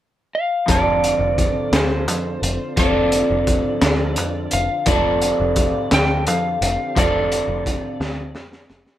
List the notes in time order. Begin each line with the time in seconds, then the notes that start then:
0.35 F5
0.66 F1 D3 F3 C4 D4 F4 A4, kick, closed hi-hat
0.71 D5
1.04 closed hi-hat
1.19 F1
1.38 kick, closed hi-hat
1.72 D2 C5, snare, closed hi-hat
2.08 F2, closed hi-hat
2.42 F1, closed hi-hat
2.76 F1 D3 F3 C4 F4 A4 D5, kick, closed hi-hat
3.12 closed hi-hat
3.30 F1
3.47 kick, closed hi-hat
3.82 D2, snare, closed hi-hat
4.16 F2, closed hi-hat
4.51 F1 F5, closed hi-hat
4.85 F1 D3 F3 C4 F4 G4 D5, kick, closed hi-hat
4.90 A4
5.22 closed hi-hat
5.40 F1
5.56 kick, closed hi-hat
5.91 D2 G5, snare, closed hi-hat
6.27 F2 F5, closed hi-hat
6.61 F1, closed hi-hat
6.95 F1 D3 F3 C4 F4 A4 D5, kick, closed hi-hat
7.32 closed hi-hat
7.48 F1
7.66 kick, closed hi-hat
8.00 D2, snare
8.35 F2, snare
8.53 snare
8.70 F1, snare
8.86 snare